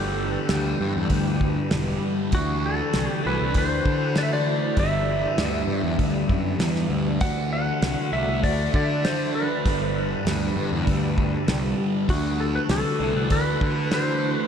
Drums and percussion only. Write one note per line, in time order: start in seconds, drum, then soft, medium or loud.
0.49 snare loud
0.49 open hi-hat medium
1.10 kick medium
1.10 open hi-hat soft
1.41 kick medium
1.71 snare loud
1.71 open hi-hat soft
2.32 kick medium
2.32 open hi-hat soft
2.93 snare loud
2.93 open hi-hat medium
3.54 kick medium
3.54 open hi-hat soft
3.86 kick medium
4.16 snare loud
4.16 open hi-hat soft
4.77 kick medium
4.77 open hi-hat soft
5.38 snare loud
5.38 open hi-hat soft
5.99 kick medium
5.99 open hi-hat soft
6.29 kick medium
6.60 snare loud
6.60 open hi-hat medium
6.76 snare soft
7.21 kick loud
7.21 open hi-hat soft
7.82 snare loud
7.82 open hi-hat soft
8.44 kick medium
8.44 open hi-hat soft
8.74 kick medium
9.05 snare loud
9.05 open hi-hat medium
9.66 kick medium
9.66 open hi-hat soft
10.27 snare loud
10.27 open hi-hat soft
10.87 kick medium
10.87 open hi-hat soft
11.18 kick medium
11.48 snare loud
11.48 open hi-hat medium
12.09 kick medium
12.09 open hi-hat soft
12.69 snare loud
12.69 open hi-hat medium
13.30 kick medium
13.30 open hi-hat medium
13.61 kick medium
13.91 snare loud
13.91 open hi-hat medium